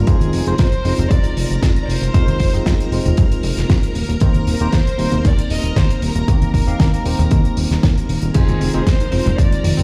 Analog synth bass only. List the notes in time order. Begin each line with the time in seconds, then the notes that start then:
0.07 F2
0.33 F1
0.47 F1
0.59 F2
0.85 F1
0.98 F1
1.11 F2
1.37 F1
1.50 F1
1.62 F2
1.88 F1
2.02 F1
2.14 F2
2.40 F1
2.53 F1
2.66 F2
2.91 F1
3.05 F1
3.18 F2
3.43 F1
3.57 F1
3.69 F2
3.95 D#1
4.09 D#1
4.21 D#2
4.47 D#1
4.61 D#1
4.73 D#2
4.98 D#1
5.12 D#1
5.25 D#2
5.50 D#1
5.64 D#1
5.76 D#2
6.02 D#1
6.15 D#1
6.28 D#2
6.54 D#1
6.67 D#1
6.80 D#2
7.05 D#1
7.19 D#1
7.31 D#2
7.57 D#1
7.71 D#1
7.83 D#2
8.09 D#1
8.23 D#1
8.35 F2
8.60 F1
8.74 F1
8.87 F2
9.13 F1
9.26 F1
9.38 F2
9.64 F1
9.78 F1